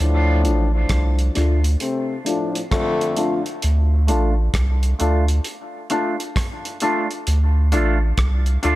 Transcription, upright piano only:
0.43 0.61 D4 medium
0.43 0.62 F4 medium
0.43 0.62 A4 medium
1.35 1.53 D4 medium
1.35 1.53 F4 medium
1.35 1.53 A4 medium
2.26 2.44 D4 medium
2.26 2.44 F4 medium
2.26 2.44 A4 medium
3.17 3.35 D4 medium
3.17 3.35 F4 medium
3.17 3.35 A4 medium
4.08 4.26 D4 medium
4.08 4.26 F4 medium
4.08 4.26 A4 medium
5.00 5.17 D4 medium
5.00 5.17 F4 medium
5.00 5.18 A4 loud
5.91 6.08 D4 medium
5.91 6.08 F4 medium
5.91 6.09 A4 medium
6.82 6.99 D4 medium
6.82 6.99 F4 medium
6.82 6.99 A4 medium
7.72 7.89 D4 medium
7.72 7.90 F4 medium
7.72 7.90 A4 medium
8.63 8.75 D4 medium
8.63 8.75 F4 medium
8.63 8.75 A4 medium

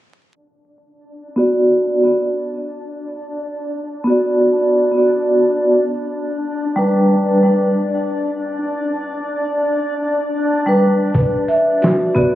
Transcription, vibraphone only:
1.36 2.01 B3 medium
1.36 2.01 F#4 medium
1.36 2.02 D5 medium
2.03 2.24 B3 medium
2.03 2.24 F#4 medium
2.03 2.25 D5 medium
4.04 4.88 B3 medium
4.04 4.89 F#4 medium
4.10 4.91 D5 medium
4.92 5.73 B3 medium
4.92 5.74 F#4 medium
4.97 5.75 D5 medium
6.76 7.40 G3 medium
6.76 7.41 D4 medium
6.76 7.41 B4 loud
7.43 7.63 G3 medium
7.43 7.64 D4 medium
7.43 7.65 B4 medium
10.66 10.93 G3 medium
10.66 10.94 D4 medium
10.66 10.94 B4 medium
12.15 12.35 B3 medium
12.15 12.35 F#4 medium
12.15 12.35 D5 loud

